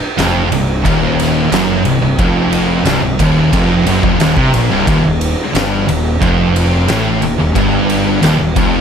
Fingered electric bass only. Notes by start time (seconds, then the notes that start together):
0.18 F1
0.51 C1
0.85 D#1
1.51 F#1
1.85 C1
2.01 C1
2.19 F1
2.85 C1
3.02 C1
3.19 D#1
3.53 F1
3.86 F#1
4.03 F1
4.20 D#1
4.36 C2
4.53 A#1
4.71 C1
4.87 D#1
5.04 D#1
5.54 G1
5.89 D#1
6.21 F1
6.89 A1
7.22 D#1
7.38 D#1
7.55 G1
8.23 D#1
8.39 D#1
8.56 F1